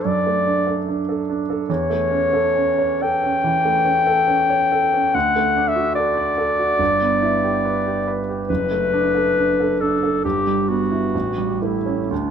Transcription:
Already playing: F#2 A3 D4 A4
0.05 F#2 D5
0.26 A3
0.47 D4
0.67 A4
0.89 D4
1.09 A4
1.30 D4
1.50 A4
1.69 E2 C#5
1.90 A3
2.11 C#4
2.33 A4
2.56 C#4
2.79 C#5
3.01 A4 G5
3.23 C#4
3.44 E3
3.65 A3
3.85 C#4
4.07 A4
4.28 C#4
4.50 C#5
4.72 A4
4.94 C#4
5.14 D2 F#5
5.36 A3
5.56 D4
5.68 E5
5.76 F#4
5.95 A4 D5
6.17 D5
6.38 A4
6.59 F#4
6.79 G1
7.01 B3
7.23 E4
7.43 G4
7.65 B4
7.86 G4
8.07 B4
8.29 G4
8.49 F#1 B4
8.71 A3
8.93 D4
9.15 A4
9.38 D4
9.60 A4
9.81 D4 A4
10.03 A4
10.24 G1 G4
10.47 G3
10.69 B3 F#4
10.92 E4
11.15 A1
11.38 G3
11.62 A3 E4
11.86 C#4
12.11 D2 D4

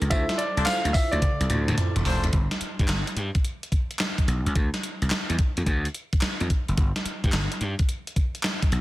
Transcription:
0.01 C#2, closed hi-hat
0.10 D2 E4 F4 A4 C5 E5, kick, closed hi-hat, tambourine
0.29 snare, closed hi-hat
0.38 D5, closed hi-hat
0.57 C2 D4 F4 A4 C5, closed hi-hat
0.65 F5, snare, clap, closed hi-hat, tambourine
0.85 D2, closed hi-hat
0.93 E5, kick, open hi-hat, tambourine
1.11 D2 D5, closed hi-hat
1.22 kick, closed hi-hat, high tom
1.40 C2, closed hi-hat
1.50 D2, closed hi-hat, mid tom
1.68 D2, closed hi-hat, mid tom
1.78 closed hi-hat, mid tom
1.96 E1, closed hi-hat, mid tom
2.05 F1 D4 F4 A4 C5, floor tom, open hi-hat
2.24 F#1, closed hi-hat, floor tom
2.33 G1, kick, closed hi-hat
2.51 snare, closed hi-hat
2.61 muted slap bass stroke, closed hi-hat
2.79 G2, kick, closed hi-hat
2.88 G1, snare, clap, closed hi-hat
3.07 closed hi-hat
3.16 G2, closed hi-hat
3.35 kick, closed hi-hat
3.45 closed hi-hat
3.63 closed hi-hat
3.72 kick, closed hi-hat
3.91 closed hi-hat
3.99 snare, clap, closed hi-hat
4.18 kick, closed hi-hat
4.28 B1, closed hi-hat
4.46 C#2, closed hi-hat
4.55 D2, kick, closed hi-hat
4.74 snare, closed hi-hat
4.83 closed hi-hat
5.02 C2, closed hi-hat
5.10 snare, clap, closed hi-hat
5.30 E2, closed hi-hat
5.39 kick, closed hi-hat
5.57 F2, closed hi-hat
5.66 D2, kick, closed hi-hat
5.85 closed hi-hat
5.94 closed hi-hat
6.13 kick, closed hi-hat
6.21 muted slap bass stroke, snare, clap, closed hi-hat
6.40 F2, closed hi-hat
6.50 kick, closed hi-hat
6.68 F#1, closed hi-hat
6.77 G1, kick, closed hi-hat
6.96 snare, closed hi-hat
7.05 muted slap bass stroke, closed hi-hat
7.24 G2, kick, closed hi-hat
7.32 G1, snare, clap, closed hi-hat
7.52 closed hi-hat
7.61 G2, closed hi-hat
7.79 kick, closed hi-hat
7.89 closed hi-hat
8.07 closed hi-hat
8.16 kick, closed hi-hat
8.35 closed hi-hat
8.43 snare, clap, closed hi-hat
8.62 kick, closed hi-hat
8.72 B1, closed hi-hat

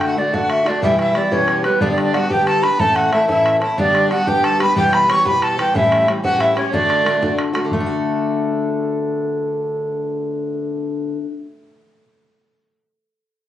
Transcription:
Already playing: D3 A3 D4 F#4
0.01 bodhran
0.06 F#4 F#5
0.14 D3 A3 E4
0.18 D4 F#4 D5
0.33 D3 A3 D4 F#4 F#5, bodhran
0.50 E5, bodhran
0.65 A3 D4 F#4 D5, bodhran
0.82 E2 B2 E3 G3 B3 E4 G4 E5, bodhran
0.99 E4 E5, bodhran
1.15 E3 G3 B3 G4 D5, bodhran
1.31 E2 B2 E3 G3 B3 C#4 G4 C#5, bodhran
1.48 bodhran
1.64 E3 G3 B3 G4 B4, bodhran
1.81 G2 D3 G3 B3 D4 G4 D5, bodhran
1.92 D5
1.98 bodhran
2.03 D4 D5
2.14 G3 B3 D4 F#4 G4 F#5, bodhran
2.29 G2 D3 G3 B3 D4 G4 G5, bodhran
2.47 A4 A5, bodhran
2.62 G3 B3 D4 G4 B4 B5, bodhran
2.79 A2 E3 A3 C#4 A4 A5, bodhran
2.96 F#4 F#5, bodhran
3.12 E3 A3 C#4 E4 A4 E5, bodhran
3.28 A2 E3 A3 C#4 E4 A4 E5, bodhran
3.46 bodhran
3.61 A3 C#4 E4 A4, bodhran
3.77 G2 D3 G3 B3 D4 G4 D5, bodhran
3.95 bodhran
4.10 G3 B3 D4 F#4 G4 F#5, bodhran
4.27 G2 D3 G3 B3 D4 G4 G5, bodhran
4.44 A4 A5, bodhran
4.60 G3 B3 D4 G4 B4 B5, bodhran
4.76 E2 B2 E3 G3 B3 G4 G5, bodhran
4.89 B4 C#5
4.93 B5, bodhran
5.09 E3 G3 B3 G4 C#5 C#6, bodhran
5.25 E2 B2 E3 G3 B3 G4 B4 B5, bodhran
5.42 A4 A5, bodhran
5.58 E3 G3 B3 G4 G5, bodhran
5.74 A2 E3 G3 C#4 E4 G4 E5, bodhran
5.92 bodhran
6.07 E3 G3 C#4 G4, bodhran
6.23 A2 E3 G3 C#4 F#4 G4 F#5, bodhran
6.40 E4 E5, bodhran
6.55 G3 C#4 G4 C#5, bodhran
6.72 D3 A3 D4 F#4 D5, bodhran
6.90 bodhran
7.05 D3 A3 D4 F#4, bodhran
7.22 D3 A3 D4 F#4, bodhran
7.39 bodhran
7.53 A3 D4 F#4, bodhran
7.65 D3
7.71 A3, bodhran
7.80 D4
7.86 F#4

